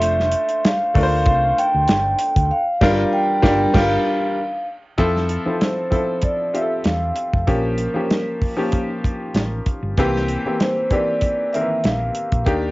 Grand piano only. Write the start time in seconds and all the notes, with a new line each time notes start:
Already playing: A3 D4 F4 C5
0.94 A3 D4 F4 A#4
1.03 C5
2.81 G3 D4 F4 A#4
3.42 G3 D4 F4 A#4
3.74 G3 D4 F4 A#4
4.98 F3 C4 E4 A4
5.46 F3 C4 E4 A4
5.90 F3 C4 E4 A4
6.54 C4 F4 G4
6.61 A4
7.47 F3 A#3 C#4 G4
7.94 F3 A#3 C#4 G4
8.56 F3 A#3 C#4 G4
9.98 E3 A#3 C4 G4
10.46 E3 A#3 C4 G4
10.91 E3 A#3 C4 G4
11.54 D#3 A#3 C4 A#4
11.61 E3
12.46 D#3 A#3 D4 G4